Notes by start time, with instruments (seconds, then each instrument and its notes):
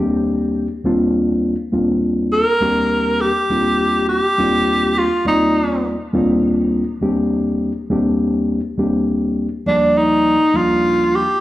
Already playing: reed electric piano D#2 G3 A#3 C4
0.00 reed electric piano D4 G4
0.84 reed electric piano D#2 G3 A#3 C4 D4 F4
1.72 reed electric piano D#2 G3 A#3 C4 D4 F4
2.33 tenor saxophone A#4
2.60 reed electric piano D#2 G3 A#3 C4 D4 G4
3.21 tenor saxophone G4
3.50 reed electric piano D#2 G3 A#3 C4 D4 F4
4.09 tenor saxophone G4
4.38 reed electric piano D#2 G3 A#3 C4 D4 F4
4.98 tenor saxophone F4
5.25 reed electric piano D#2 G3 A#3 C4 F4 D5, tenor saxophone D#4
6.13 reed electric piano D#2 G3 A#3 C4 D4 F4
7.01 reed electric piano D#2 G3 A#3 C4 D4 G4
7.90 reed electric piano D#2 G3 A#3 C4 D4 G4
8.77 reed electric piano D#2 G3 A#3 C4 D4 G4
9.66 reed electric piano D#2 F3 G3 A#3 D5, tenor saxophone D4
9.98 tenor saxophone D#4
10.54 reed electric piano D#2 F3 G3 A#3 D4, tenor saxophone F4
11.15 tenor saxophone G4